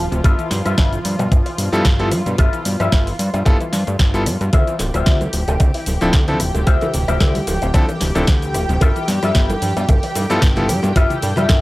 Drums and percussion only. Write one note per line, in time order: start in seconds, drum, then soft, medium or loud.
0.12 closed hi-hat soft
0.12 shaker soft
0.24 kick loud
0.24 closed hi-hat medium
0.24 shaker soft
0.39 closed hi-hat soft
0.39 shaker soft
0.51 snare medium
0.51 open hi-hat loud
0.51 shaker medium
0.66 cross-stick medium
0.66 closed hi-hat soft
0.66 shaker soft
0.78 kick loud
0.78 snare loud
0.78 closed hi-hat medium
0.78 shaker soft
0.93 closed hi-hat soft
0.93 shaker soft
1.05 open hi-hat loud
1.05 shaker medium
1.19 closed hi-hat soft
1.19 shaker soft
1.32 kick loud
1.32 closed hi-hat medium
1.32 shaker soft
1.46 open hi-hat medium
1.58 open hi-hat loud
1.58 shaker medium
1.73 closed hi-hat soft
1.73 shaker soft
1.85 kick loud
1.85 snare loud
1.85 closed hi-hat medium
1.85 shaker soft
2.00 closed hi-hat soft
2.12 cross-stick medium
2.12 open hi-hat loud
2.12 shaker medium
2.26 closed hi-hat soft
2.26 shaker soft
2.38 kick loud
2.38 closed hi-hat medium
2.38 shaker soft
2.53 closed hi-hat soft
2.53 shaker soft
2.65 open hi-hat loud
2.65 shaker medium
2.80 cross-stick medium
2.80 closed hi-hat soft
2.80 shaker soft
2.92 kick loud
2.92 snare loud
2.92 closed hi-hat medium
2.92 shaker soft
3.07 open hi-hat medium
3.07 shaker soft
3.19 open hi-hat loud
3.19 shaker medium
3.34 closed hi-hat soft
3.34 shaker soft
3.46 kick loud
3.46 closed hi-hat medium
3.46 shaker soft
3.60 closed hi-hat soft
3.60 shaker soft
3.73 snare medium
3.73 open hi-hat loud
3.73 shaker medium
3.87 closed hi-hat soft
3.87 shaker soft
3.99 kick loud
3.99 snare loud
3.99 closed hi-hat medium
3.99 shaker soft
4.14 closed hi-hat soft
4.14 shaker soft
4.26 cross-stick medium
4.26 open hi-hat loud
4.26 shaker medium
4.41 closed hi-hat soft
4.41 shaker soft
4.53 kick loud
4.53 closed hi-hat medium
4.53 high bongo soft
4.53 shaker soft
4.53 shaker medium
4.67 closed hi-hat soft
4.67 shaker soft
4.79 snare medium
4.79 open hi-hat loud
4.79 high bongo medium
4.79 shaker medium
4.94 cross-stick medium
4.94 closed hi-hat soft
4.94 shaker soft
4.94 shaker medium
5.06 kick loud
5.06 snare loud
5.06 closed hi-hat medium
5.06 shaker soft
5.06 shaker medium
5.21 closed hi-hat soft
5.21 high bongo medium
5.21 high conga medium
5.21 shaker soft
5.33 open hi-hat loud
5.33 shaker medium
5.48 closed hi-hat soft
5.48 high bongo medium
5.48 shaker soft
5.48 shaker medium
5.60 kick loud
5.60 closed hi-hat medium
5.60 low conga medium
5.60 shaker soft
5.60 shaker medium
5.74 open hi-hat medium
5.74 shaker soft
5.86 open hi-hat loud
5.86 high bongo soft
5.86 high conga medium
5.86 shaker medium
6.01 closed hi-hat soft
6.01 shaker medium
6.01 shaker soft
6.13 kick loud
6.13 snare loud
6.13 closed hi-hat medium
6.13 high bongo medium
6.13 shaker soft
6.13 shaker medium
6.28 closed hi-hat soft
6.28 low conga medium
6.28 shaker soft
6.40 cross-stick medium
6.40 open hi-hat loud
6.40 low conga medium
6.40 shaker medium
6.54 closed hi-hat soft
6.54 high bongo medium
6.54 high conga medium
6.54 shaker soft
6.54 shaker medium
6.67 kick loud
6.67 closed hi-hat medium
6.67 shaker soft
6.67 shaker medium
6.81 closed hi-hat soft
6.81 high bongo medium
6.81 low conga medium
6.81 shaker soft
6.94 open hi-hat loud
6.94 shaker medium
7.08 cross-stick medium
7.08 closed hi-hat soft
7.08 low conga medium
7.08 shaker medium
7.08 shaker soft
7.20 kick loud
7.20 snare loud
7.20 closed hi-hat medium
7.20 high bongo soft
7.20 shaker medium
7.20 shaker soft
7.35 open hi-hat medium
7.35 high conga medium
7.35 shaker soft
7.47 open hi-hat loud
7.47 high bongo medium
7.47 shaker medium
7.61 closed hi-hat soft
7.61 shaker medium
7.61 shaker soft
7.74 kick loud
7.74 closed hi-hat medium
7.74 shaker medium
7.74 shaker soft
7.88 closed hi-hat soft
7.88 high bongo medium
7.88 shaker soft
8.01 snare medium
8.01 open hi-hat loud
8.01 high conga medium
8.01 shaker medium
8.15 closed hi-hat soft
8.15 high bongo medium
8.15 low conga medium
8.15 shaker soft
8.15 shaker medium
8.27 kick loud
8.27 snare loud
8.27 closed hi-hat medium
8.27 shaker soft
8.27 shaker medium
8.42 closed hi-hat soft
8.42 shaker soft
8.54 cross-stick medium
8.54 open hi-hat loud
8.54 high bongo medium
8.54 shaker medium
8.69 closed hi-hat soft
8.69 high conga medium
8.69 shaker soft
8.69 shaker medium
8.81 kick loud
8.81 closed hi-hat medium
8.81 high bongo medium
8.81 shaker medium
8.81 shaker soft
8.96 closed hi-hat soft
8.96 shaker soft
9.08 snare medium
9.08 open hi-hat loud
9.08 shaker medium
9.23 cross-stick medium
9.23 closed hi-hat soft
9.23 high bongo medium
9.23 shaker soft
9.23 shaker medium
9.35 kick loud
9.35 snare loud
9.35 closed hi-hat medium
9.35 shaker medium
9.35 shaker soft
9.49 closed hi-hat soft
9.49 high bongo medium
9.49 high conga medium
9.49 shaker soft
9.62 open hi-hat loud
9.62 shaker medium
9.77 closed hi-hat soft
9.77 shaker medium
9.77 shaker soft
9.89 kick loud
9.89 closed hi-hat medium
9.89 high bongo medium
9.89 low conga medium
9.89 shaker soft
9.89 shaker medium
10.03 open hi-hat medium
10.03 shaker soft
10.15 open hi-hat loud
10.15 high bongo medium
10.15 high conga medium
10.15 shaker medium
10.29 closed hi-hat soft
10.29 shaker medium
10.29 shaker soft
10.42 kick loud
10.42 snare loud
10.42 closed hi-hat loud
10.42 shaker medium
10.42 shaker soft
10.56 closed hi-hat soft
10.56 high bongo medium
10.56 low conga medium
10.56 shaker soft
10.68 cross-stick medium
10.68 open hi-hat loud
10.68 low conga medium
10.68 shaker medium
10.82 closed hi-hat soft
10.82 high bongo medium
10.82 high conga medium
10.82 shaker medium
10.84 shaker soft
10.96 kick loud
10.96 closed hi-hat loud
10.96 shaker medium
10.96 shaker soft
11.10 closed hi-hat soft
11.10 low conga medium
11.10 shaker soft
11.22 open hi-hat loud
11.22 high bongo medium
11.22 shaker medium
11.36 cross-stick medium
11.36 closed hi-hat soft
11.36 low conga medium
11.36 shaker medium
11.36 shaker soft
11.49 kick loud
11.49 snare loud
11.49 closed hi-hat loud
11.49 high bongo medium
11.49 shaker medium
11.49 shaker soft